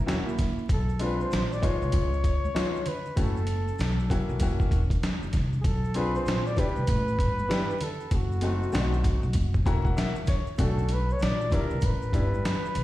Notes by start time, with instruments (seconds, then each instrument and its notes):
Already playing: upright bass E1
0.06 upright piano A#3 C#4 E4 F#4, clean electric guitar C#4 F#4, snare, closed hi-hat
0.11 maracas
0.26 clean electric guitar A#3 E4, maracas
0.38 kick, snare, closed hi-hat, low conga, maracas
0.58 maracas
0.69 upright bass B1, muted trumpet A4, kick, closed hi-hat, maracas
0.89 maracas
0.99 upright piano G#3 C4 D4 F4, closed hi-hat, high conga, maracas
1.04 muted trumpet B4
1.21 muted trumpet C5, maracas
1.31 upright bass A#1, snare, closed hi-hat, maracas
1.53 muted trumpet D5, maracas
1.62 upright piano G#3 B3 D#4 F4, muted trumpet C#5, kick, closed hi-hat, low conga, maracas
1.82 upright bass C2, maracas
1.92 upright bass C#2, kick, closed hi-hat, high conga, maracas
2.13 maracas
2.24 kick, closed hi-hat, maracas
2.45 high conga, maracas
2.55 upright piano G#3 B3 D#4 F4, snare, closed hi-hat, maracas
2.76 maracas
2.86 muted trumpet B4, closed hi-hat, low conga, maracas
3.06 maracas
3.16 upright bass F#1, upright piano A3 C#4 E4 F#4, muted trumpet A4, kick, closed hi-hat, maracas
3.37 maracas
3.47 closed hi-hat, high conga, maracas
3.68 maracas
3.79 upright bass B1, snare, closed hi-hat, maracas
3.99 maracas
4.10 upright piano A#3 C#4 E4 F#4, kick, closed hi-hat, low conga, maracas
4.29 upright bass B1, maracas
4.40 upright bass F#1, upright piano A#3 C#4 E4 F#4, kick, closed hi-hat, high conga, maracas
4.60 kick, maracas
4.71 upright bass E1, kick, closed hi-hat, maracas
4.90 kick, closed hi-hat, high conga, maracas
5.03 snare, closed hi-hat, maracas
5.22 upright bass F#1, maracas
5.33 upright bass C2, kick, snare, closed hi-hat, low conga, maracas
5.53 maracas
5.61 upright bass B1, muted trumpet G#4, kick, closed hi-hat, maracas
5.66 muted trumpet A4
5.84 maracas
5.94 upright piano C4 D4 F4 G#4, muted trumpet B4, closed hi-hat, high conga, maracas
6.15 muted trumpet C5, maracas
6.26 upright bass A#1, snare, closed hi-hat, maracas
6.47 muted trumpet D5, maracas
6.56 upright piano B3 D4 E4 G4, muted trumpet B4, kick, closed hi-hat, low conga, maracas
6.76 upright bass C2, maracas
6.87 upright bass A1, kick, closed hi-hat, high conga, maracas
7.08 maracas
7.19 upright bass G1, kick, closed hi-hat, maracas
7.39 high conga, maracas
7.48 upright piano B3 D4 E4 G4, snare, closed hi-hat, maracas
7.70 maracas
7.81 muted trumpet A4, closed hi-hat, low conga, maracas
8.01 maracas
8.11 upright bass F#1, muted trumpet F#4, kick, closed hi-hat, maracas
8.32 maracas
8.41 upright piano A3 C4 D#4 F#4, closed hi-hat, high conga, maracas
8.63 maracas
8.73 upright bass B1, upright piano A3 C4 D4 F#4, snare, closed hi-hat, maracas
8.80 upright piano D#4
8.93 maracas
9.04 kick, closed hi-hat, low conga, maracas
9.23 upright bass B1, maracas
9.33 upright bass F#1, kick, closed hi-hat, high conga, maracas
9.54 kick, maracas
9.66 upright bass E1, upright piano A3 C#4 E4 F#4 A#5, kick, closed hi-hat, maracas
9.72 upright piano A#3
9.85 upright piano F#5, kick, high conga, maracas
9.97 upright piano E5, snare, closed hi-hat, maracas
10.16 maracas
10.27 upright piano C#5, kick, snare, closed hi-hat, low conga, maracas
10.47 maracas
10.58 upright bass B1, upright piano A3 C#4 D4 F#4, kick, closed hi-hat, maracas
10.63 muted trumpet A4
10.78 maracas
10.89 closed hi-hat, high conga, maracas
10.93 muted trumpet B4
11.10 muted trumpet C#5, maracas
11.20 upright bass A#1, muted trumpet D5, snare, closed hi-hat, maracas
11.41 maracas
11.50 upright piano G3 B3 D4 E4, kick, closed hi-hat, low conga, maracas
11.55 muted trumpet A#4
11.70 upright bass C2, maracas
11.81 upright bass A1, kick, closed hi-hat, high conga, maracas
11.85 muted trumpet B4
12.02 maracas
12.12 upright bass G1, upright piano G3 B3 D4 E4, kick, closed hi-hat, maracas
12.34 high conga, maracas
12.45 snare, closed hi-hat, maracas
12.65 maracas
12.75 upright bass B1, closed hi-hat, low conga, maracas